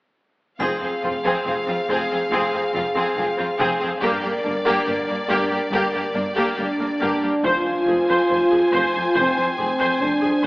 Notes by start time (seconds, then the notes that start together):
0.59 F1 F2 C4 G#4 F5, taiko, triangle
0.81 F2 C4 G#4
1.03 F1 F2 C4 F4
1.24 F2 C4 G#4
1.46 F1 F2 C4 G#4
1.67 F2 C4 F4
1.88 F1 F2 C4 G#4
2.10 F2 C4 G#4
2.31 F1 F2 C4 G#4
2.53 F2 C4 G#4
2.73 F1 F2 C4 F4
2.95 F2 C4 G#4
3.17 F1 F2 C4 G#4
3.37 F2 C4 F4
3.59 F1 F2 C4 G#4
3.80 F2 C4 G#4
4.00 G1 G2 A#3 D4 G4 A#4 D5
4.22 G2 A#3 G4
4.44 G1 G2 A#3 D4
4.65 G2 A#3 G4
4.86 G1 G2 A#3 G4
5.07 G2 A#3 D4
5.29 G1 G2 A#3 G4
5.51 G2 A#3 G4
5.71 G1 G2 A#3 G4
5.93 G2 A#3 G4
6.14 G1 G2 A#3 D4
6.35 G2 A#3 G4
6.57 G1 G2 A#3 D4 G4
6.79 G2 A#3 D4
7.00 G1 G2 A#3 G4
7.22 G2 A#3 G4
7.44 F1 F2 F4 C5 G#5, taiko, impact
7.87 F1 F2 G#4
8.09 F2 C5
8.30 F1 F2 C5
8.52 F2 G#4
8.72 F1 F2 C5, taiko
8.94 F2 C5
9.15 F1 F2 C4 C5
9.37 F2 C5
9.58 F1 F2 G#4
9.79 F2 C5
10.00 F1 F2 D4 C5
10.21 F2 G#4
10.43 F1 C5